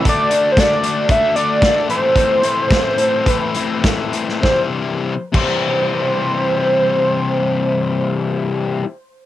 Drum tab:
CC |----------------|----------------|------x---------|----------------|
HH |x-x-x-x-x-x-x-x-|x-x-x-x-x-x-x-x-|----------------|----------------|
SD |----o-------o---|----o-------o--o|o---------------|----------------|
BD |o---o---o---o---|o---o---o---o---|o-----o---------|----------------|